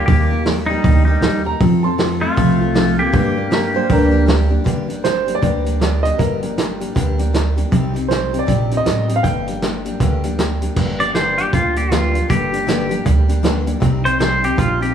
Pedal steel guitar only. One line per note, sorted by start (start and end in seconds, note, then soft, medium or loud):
0.06 0.44 A#3 medium
0.06 0.42 G4 loud
0.66 1.05 G3 medium
0.66 1.04 D#4 medium
1.05 1.43 G3 medium
1.05 1.42 D#4 medium
2.21 2.94 A3 medium
2.21 2.99 F4 loud
2.99 4.24 A#3 medium
2.99 4.24 G4 loud
11.00 11.14 D5 medium
11.15 11.37 C5 medium
11.38 11.52 G4 medium
11.54 11.76 F4 medium
11.77 11.92 G4 medium
11.92 12.29 F4 medium
12.30 13.04 G4 loud
14.05 14.19 C5 loud
14.20 14.43 C5 medium
14.45 14.58 G4 medium
14.59 14.81 F4 medium
14.82 14.94 G4 medium